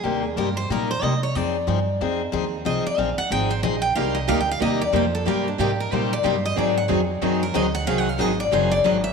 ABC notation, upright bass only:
X:1
M:4/4
L:1/8
Q:"Swing" 1/4=184
K:Cm
V:1 name="Upright bass" clef=bass
E,,2 G,,2 B,,2 C,2 | F,,2 G,,2 F,,2 E,,2 | C,, z B,,, z A,,,2 B,,,2 | C,,2 D,,2 E,,2 F,,2 |
G,,2 A,,2 B,,2 G,,2 | A,,2 F,,2 _G,,2 D,,2 | C,,2 A,,,2 _G,,,2 A,,,2 |]